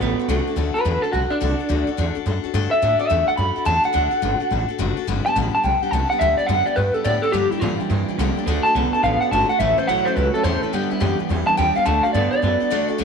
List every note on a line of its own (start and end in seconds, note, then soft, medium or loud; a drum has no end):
0.00 0.17 A1 medium
0.00 0.27 D3 medium
0.00 0.19 A3 medium
0.00 0.27 B3 loud
0.00 0.19 D4 medium
0.00 0.19 F#4 medium
0.00 0.18 A4 medium
0.18 0.28 D4 medium
0.18 0.29 F#4 soft
0.18 0.29 A4 medium
0.18 muted upright bass stroke medium
0.28 0.46 C2 medium
0.28 0.47 D3 loud
0.28 0.47 A3 loud
0.28 0.47 D4 loud
0.28 0.47 F#4 medium
0.28 0.46 A4 loud
0.47 0.56 D4 medium
0.47 0.56 F#4 medium
0.47 0.56 A4 medium
0.56 0.74 D2 medium
0.56 0.75 D3 medium
0.56 0.75 A3 loud
0.56 0.75 D4 medium
0.56 0.75 F#4 medium
0.56 0.73 A4 loud
0.74 0.84 D4 soft
0.74 0.85 F#4 medium
0.74 0.85 A4 medium
0.74 1.02 B4 loud
0.74 muted upright bass stroke medium
0.85 1.03 E2 medium
0.85 1.03 D3 medium
0.85 1.03 A3 medium
0.85 1.03 D4 medium
0.85 1.03 F#4 medium
0.85 1.02 A4 medium
1.02 1.13 D4 soft
1.02 1.13 F#4 soft
1.02 1.12 A4 loud
1.02 1.13 A4 medium
1.02 muted upright bass stroke medium
1.12 1.31 B1 medium
1.12 1.31 A3 medium
1.12 1.31 D4 medium
1.12 1.30 F#4 medium
1.12 1.29 A4 medium
1.30 2.13 D4 medium
1.30 1.40 D4 soft
1.30 1.40 F#4 soft
1.30 1.41 A4 medium
1.30 muted upright bass stroke medium
1.40 1.59 C2 medium
1.40 1.59 D3 medium
1.40 1.59 A3 medium
1.40 1.60 D4 loud
1.40 1.59 F#4 loud
1.40 1.58 A4 loud
1.59 1.68 D4 medium
1.59 1.69 F#4 soft
1.59 1.69 A4 medium
1.69 1.87 D2 medium
1.69 1.87 D3 loud
1.69 1.88 A3 loud
1.69 1.88 D4 medium
1.69 1.87 F#4 loud
1.69 1.86 A4 loud
1.87 1.97 D4 medium
1.87 1.97 F#4 medium
1.87 1.97 A4 medium
1.87 muted upright bass stroke medium
1.97 2.16 E2 loud
1.97 2.16 D3 medium
1.97 2.16 A3 loud
1.97 2.16 D4 medium
1.97 2.15 F#4 medium
1.97 2.14 A4 loud
2.15 2.25 D4 soft
2.15 2.26 F#4 medium
2.15 2.25 A4 medium
2.15 muted upright bass stroke medium
2.26 2.44 F#2 medium
2.26 2.44 A3 medium
2.26 2.44 D4 medium
2.26 2.44 F#4 medium
2.26 2.42 A4 medium
2.44 2.54 D4 soft
2.44 2.54 F#4 medium
2.44 2.54 A4 medium
2.44 muted upright bass stroke medium
2.54 2.72 G2 medium
2.54 2.72 D3 loud
2.54 2.72 A3 medium
2.54 2.73 D4 loud
2.54 2.72 F#4 loud
2.54 2.71 A4 loud
2.71 2.81 D4 medium
2.71 2.81 F#4 medium
2.71 2.82 A4 medium
2.71 2.99 E5 loud
2.71 muted upright bass stroke medium
2.82 3.00 A2 medium
2.82 3.00 D3 medium
2.82 3.00 A3 medium
2.82 3.00 D4 loud
2.82 2.99 F#4 loud
2.82 2.98 A4 medium
2.99 3.09 D4 soft
2.99 3.10 F#4 medium
2.99 3.10 A4 medium
2.99 3.27 E5 loud
2.99 muted upright bass stroke medium
3.09 3.28 E2 medium
3.09 3.28 D3 medium
3.09 3.28 A3 medium
3.09 3.29 D4 medium
3.09 3.28 F#4 medium
3.09 3.27 A4 medium
3.28 3.37 D4 soft
3.28 3.37 F#4 medium
3.28 3.38 A4 soft
3.28 3.37 F#5 loud
3.28 muted upright bass stroke medium
3.37 3.56 F#2 loud
3.37 3.56 A3 medium
3.37 3.57 D4 medium
3.37 3.56 F#4 medium
3.37 3.55 A4 medium
3.37 3.65 B5 medium
3.56 3.65 D4 soft
3.56 3.65 F#4 soft
3.56 3.65 A4 medium
3.56 muted upright bass stroke medium
3.65 3.84 E2 loud
3.65 3.84 D3 medium
3.65 3.84 A3 medium
3.65 3.84 D4 loud
3.65 3.83 F#4 medium
3.65 3.82 A4 loud
3.65 3.84 A5 loud
3.84 3.92 D4 soft
3.84 3.93 F#4 medium
3.84 3.93 A4 medium
3.84 4.67 F#5 loud
3.93 4.12 D2 medium
3.93 4.12 D3 medium
3.93 4.13 A3 medium
3.93 4.11 D4 loud
3.93 4.11 F#4 medium
3.93 4.10 A4 medium
4.11 4.21 D4 soft
4.11 4.22 F#4 medium
4.11 4.22 A4 medium
4.22 4.40 G1 medium
4.22 4.41 D3 medium
4.22 4.41 A3 medium
4.22 4.41 D4 loud
4.22 4.40 F#4 loud
4.22 4.39 A4 medium
4.40 4.50 D4 soft
4.40 4.51 F#4 medium
4.40 4.51 A4 medium
4.40 muted upright bass stroke medium
4.51 4.68 A1 loud
4.51 4.69 A3 medium
4.51 4.69 D4 medium
4.51 4.69 F#4 medium
4.51 4.67 A4 medium
4.69 4.78 D4 soft
4.69 4.78 F#4 medium
4.69 4.79 A4 medium
4.69 muted upright bass stroke medium
4.78 4.97 F#1 loud
4.78 4.97 D3 medium
4.78 4.98 A3 loud
4.78 4.98 D4 loud
4.78 4.96 F#4 loud
4.78 4.96 A4 loud
4.97 5.07 D4 medium
4.97 5.08 F#4 medium
4.97 5.07 A4 medium
4.97 muted upright bass stroke medium
5.07 5.25 G1 medium
5.07 5.26 G2 loud
5.07 5.26 D3 medium
5.07 5.26 G3 loud
5.07 5.26 B3 loud
5.07 5.25 D4 loud
5.07 5.25 G4 loud
5.26 5.35 G3 soft
5.26 5.35 B3 medium
5.26 5.35 D4 medium
5.26 5.36 G4 medium
5.26 5.36 A5 loud
5.36 5.53 A1 loud
5.36 5.54 G2 medium
5.36 5.54 D3 medium
5.36 5.54 G3 medium
5.36 5.54 B3 medium
5.36 5.54 D4 medium
5.36 5.53 G4 loud
5.54 5.62 G3 soft
5.54 5.63 B3 soft
5.54 5.63 D4 soft
5.54 5.64 G4 soft
5.54 5.64 A5 medium
5.54 muted upright bass stroke medium
5.63 5.81 B1 medium
5.63 5.82 G3 medium
5.63 5.83 B3 medium
5.63 5.82 D4 medium
5.63 5.81 G4 medium
5.63 5.82 G5 loud
5.82 5.92 G3 soft
5.82 5.92 B3 soft
5.82 5.93 D4 medium
5.82 5.93 G4 medium
5.82 5.91 F#5 loud
5.82 muted upright bass stroke medium
5.91 6.10 C2 medium
5.91 6.11 G2 medium
5.91 6.11 D3 medium
5.91 6.11 G3 medium
5.91 6.11 B3 medium
5.91 6.11 D4 medium
5.91 6.10 G4 medium
5.91 6.09 A5 loud
6.10 6.20 G3 medium
6.10 6.20 B3 soft
6.10 6.20 D4 medium
6.10 6.21 G4 medium
6.10 6.20 F#5 loud
6.19 6.38 D2 medium
6.19 6.39 G2 medium
6.19 6.39 D3 medium
6.19 6.39 G3 medium
6.19 6.39 B3 medium
6.19 6.38 D4 medium
6.19 6.37 G4 medium
6.19 6.37 E5 loud
6.37 6.48 G3 soft
6.37 6.48 B3 medium
6.37 6.48 D4 medium
6.37 6.49 G4 medium
6.37 6.48 D5 loud
6.37 muted upright bass stroke medium
6.47 6.67 F#2 loud
6.47 6.67 G2 medium
6.47 6.67 D3 medium
6.47 6.67 G3 loud
6.47 6.66 B3 medium
6.47 6.66 D4 medium
6.47 6.65 G4 medium
6.47 6.65 F#5 loud
6.66 6.75 G3 soft
6.66 6.76 B3 medium
6.66 6.76 D4 medium
6.66 6.77 G4 medium
6.66 6.76 D5 medium
6.66 muted upright bass stroke medium
6.76 6.95 G2 loud
6.76 6.95 G3 medium
6.76 6.94 B3 medium
6.76 6.93 D4 medium
6.76 6.93 G4 medium
6.76 6.94 B4 medium
6.94 7.04 G3 soft
6.94 7.04 B3 soft
6.94 7.04 D4 soft
6.94 7.04 G4 medium
6.94 7.04 A4 medium
7.04 7.23 G2 medium
7.04 7.23 A2 loud
7.04 7.23 D3 medium
7.04 7.23 G3 loud
7.04 7.23 B3 medium
7.04 7.22 D4 loud
7.04 7.22 G4 loud
7.04 7.23 D5 medium
7.22 7.33 G3 soft
7.22 7.34 B3 medium
7.22 7.33 D4 medium
7.22 7.33 G4 medium
7.22 7.33 A4 loud
7.22 muted upright bass stroke medium
7.32 7.52 G2 medium
7.32 7.51 G2 medium
7.32 7.52 D3 medium
7.32 7.52 F3 medium
7.32 7.51 A#3 medium
7.32 7.51 D4 loud
7.32 7.51 G4 loud
7.32 7.50 G4 medium
7.51 7.61 F3 soft
7.51 7.61 A#3 medium
7.51 7.61 D4 medium
7.51 7.60 E4 medium
7.51 7.61 G4 medium
7.51 muted upright bass stroke soft
7.60 7.80 G2 medium
7.60 7.80 A#2 loud
7.60 7.80 D3 medium
7.60 7.88 E3 loud
7.60 7.80 F3 medium
7.60 7.80 A#3 loud
7.60 7.79 D4 loud
7.60 7.79 F4 loud
7.60 7.78 G4 loud
7.80 7.88 F3 soft
7.80 7.89 A#3 soft
7.80 7.90 D4 medium
7.80 7.90 G4 soft
7.80 muted upright bass stroke medium
7.89 8.16 G2 medium
7.89 8.08 G2 medium
7.89 8.16 E3 medium
7.89 8.08 F3 medium
7.89 8.08 A#3 medium
7.89 8.08 D4 medium
7.89 8.07 G4 medium
8.09 8.18 F3 medium
8.09 8.19 A#3 medium
8.09 8.19 D4 medium
8.09 8.18 G4 medium
8.09 muted upright bass stroke medium
8.18 8.36 C2 loud
8.18 8.37 G2 loud
8.18 8.37 D3 loud
8.18 8.37 F3 loud
8.18 8.38 A#3 loud
8.18 8.37 D4 loud
8.18 8.36 G4 loud
8.37 8.47 F3 soft
8.37 8.47 A#3 medium
8.37 8.47 D4 medium
8.37 8.47 G4 medium
8.37 muted upright bass stroke medium
8.47 8.64 D2 loud
8.47 8.65 D3 medium
8.47 8.65 A3 loud
8.47 8.66 D4 loud
8.47 8.65 F#4 loud
8.47 8.65 A4 loud
8.63 8.75 F#4 medium
8.63 8.75 A4 medium
8.63 8.74 A5 loud
8.63 muted upright bass stroke medium
8.68 8.75 D4 medium
8.75 8.93 B1 loud
8.75 8.94 D3 medium
8.75 8.94 A3 medium
8.75 9.01 B3 loud
8.75 8.94 D4 medium
8.75 8.94 F#4 medium
8.75 8.93 A4 medium
8.93 9.03 D4 soft
8.93 9.04 F#4 medium
8.93 9.04 A4 medium
8.93 9.03 A5 medium
8.93 muted upright bass stroke medium
9.02 9.21 A1 medium
9.02 9.29 D3 medium
9.02 9.22 A3 medium
9.02 9.29 B3 medium
9.02 9.22 D4 medium
9.02 9.21 F#4 medium
9.02 9.20 A4 medium
9.02 9.20 F5 loud
9.21 9.32 D4 soft
9.21 9.32 F#4 medium
9.21 9.32 A4 soft
9.21 9.31 F#5 loud
9.31 9.49 G1 loud
9.31 9.50 D3 medium
9.31 9.50 A3 medium
9.31 9.50 D4 medium
9.31 9.49 F#4 medium
9.31 9.48 A4 medium
9.31 9.49 A5 medium
9.49 9.60 D4 soft
9.49 9.60 F#4 medium
9.49 9.59 A4 medium
9.49 9.59 F#5 loud
9.49 muted upright bass stroke medium
9.59 9.77 A1 medium
9.59 9.78 A2 medium
9.59 9.78 E3 medium
9.59 9.78 A3 medium
9.59 9.78 C#4 medium
9.59 9.78 E4 medium
9.59 9.76 A4 medium
9.59 9.77 E5 loud
9.78 9.88 A3 soft
9.78 9.88 C#4 medium
9.78 9.88 E4 medium
9.78 9.88 A4 medium
9.78 9.88 C5 loud
9.87 10.05 B1 medium
9.87 10.06 A2 medium
9.87 10.07 E3 medium
9.87 10.15 F#3 loud
9.87 10.07 A3 medium
9.87 10.07 C#4 medium
9.87 10.06 E4 medium
9.87 10.05 A4 medium
9.87 10.05 F#5 loud
10.05 10.15 A3 soft
10.05 10.16 C#4 medium
10.05 10.16 E4 medium
10.05 10.16 A4 medium
10.05 10.15 C5 medium
10.05 muted upright bass stroke soft
10.15 10.34 C#2 medium
10.15 10.42 A2 medium
10.15 10.42 F#3 loud
10.15 10.35 A3 medium
10.15 10.34 C#4 medium
10.15 10.34 E4 medium
10.15 10.33 A4 medium
10.15 10.33 B4 loud
10.34 10.43 A3 soft
10.34 10.44 C#4 medium
10.34 10.44 E4 medium
10.34 10.43 A4 loud
10.34 10.44 A4 soft
10.34 muted upright bass stroke medium
10.43 10.62 E2 loud
10.43 10.63 A2 medium
10.43 10.63 E3 loud
10.43 10.63 A3 medium
10.43 10.63 C#4 loud
10.43 10.62 E4 medium
10.43 10.62 A4 medium
10.43 10.62 C5 loud
10.62 10.73 A3 soft
10.62 10.73 C#4 medium
10.62 10.73 E4 soft
10.62 10.73 A4 loud
10.62 10.73 A4 medium
10.62 muted upright bass stroke medium
10.73 10.90 G2 medium
10.73 10.91 G2 medium
10.73 10.91 D3 medium
10.73 10.91 G3 medium
10.73 10.90 B3 medium
10.73 10.90 D4 medium
10.73 10.91 G4 loud
10.73 10.89 G4 medium
10.90 11.00 G3 medium
10.90 11.00 B3 medium
10.90 11.00 D4 medium
10.90 11.01 E4 loud
10.90 11.00 G4 medium
10.90 muted upright bass stroke soft
11.00 11.19 F#2 loud
11.00 11.19 G2 medium
11.00 11.19 D3 medium
11.00 11.28 E3 medium
11.00 11.19 G3 medium
11.00 11.19 B3 medium
11.00 11.18 D4 loud
11.00 11.19 G4 loud
11.00 11.18 G4 medium
11.19 11.28 G3 soft
11.19 11.29 B3 medium
11.19 11.29 D4 soft
11.19 11.29 G4 soft
11.19 muted upright bass stroke medium
11.29 11.47 E2 loud
11.29 11.56 G2 medium
11.29 11.56 E3 loud
11.29 11.48 G3 medium
11.29 11.47 B3 medium
11.29 11.47 D4 medium
11.29 11.46 G4 medium
11.47 11.57 G3 soft
11.47 11.57 B3 medium
11.47 11.57 D4 soft
11.47 11.58 G4 medium
11.47 11.57 A5 loud
11.47 muted upright bass stroke medium
11.57 11.76 D#2 loud
11.57 11.76 G2 loud
11.57 11.76 D3 medium
11.57 11.76 G3 medium
11.57 11.76 B3 medium
11.57 11.75 D4 loud
11.57 11.74 G4 loud
11.57 11.75 G5 loud
11.75 11.85 G3 soft
11.75 11.86 B3 medium
11.75 11.85 D4 medium
11.75 11.86 G4 medium
11.75 11.86 F5 loud
11.75 muted upright bass stroke medium
11.85 12.04 D2 medium
11.85 12.04 D3 medium
11.85 12.04 A3 loud
11.85 12.04 D4 loud
11.85 12.04 F#4 medium
11.85 12.03 A4 loud
11.85 12.04 A5 loud
12.03 12.14 D4 soft
12.03 12.14 F#4 medium
12.03 12.14 A4 medium
12.03 12.13 F5 loud
12.03 muted upright bass stroke medium
12.13 12.32 G2 loud
12.13 12.33 D3 loud
12.13 12.33 A3 medium
12.13 12.41 B3 loud
12.13 12.33 D4 medium
12.13 12.32 F#4 medium
12.13 12.31 A4 loud
12.13 12.30 D5 loud
12.31 12.42 D4 soft
12.31 12.43 F#4 soft
12.31 12.43 A4 medium
12.31 12.87 D5 loud
12.31 muted upright bass stroke medium
12.42 12.61 F#2 loud
12.42 12.69 D3 medium
12.42 12.61 A3 medium
12.42 12.69 B3 loud
12.42 12.61 D4 medium
12.42 12.60 F#4 medium
12.42 12.59 A4 medium
12.60 12.70 D4 soft
12.60 12.71 F#4 soft
12.60 12.71 A4 medium
12.60 muted upright bass stroke medium
12.70 12.88 E2 medium
12.70 12.89 D3 loud
12.70 12.89 A3 loud
12.70 12.89 D4 loud
12.70 12.88 F#4 loud
12.70 12.87 A4 loud
12.88 12.98 D4 medium
12.88 12.98 F#4 medium
12.88 12.98 A4 medium
12.88 muted upright bass stroke soft
12.98 13.04 D2 loud
12.98 13.04 D3 loud
12.98 13.04 A3 loud
12.98 13.04 D4 loud
12.98 13.04 F#4 loud
12.98 13.04 A4 loud